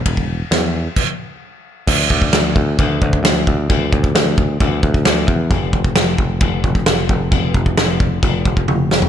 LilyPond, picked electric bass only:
\new Staff \with { instrumentName = "Picked electric bass" } { \clef bass \time 4/4 \tempo 4 = 132 e,,4 e,4 r2 | d,8 d,8 d,8 d,8 d,8 d,8 d,8 d,8 | d,8 d,8 d,4 d,8 d,8 d,8 e,8 | f,,8 f,,8 f,,8 f,,8 f,,8 f,,8 f,,8 f,,8 |
f,,8 f,,8 f,,4 f,,8 f,,8 f,,8 f,,8 | }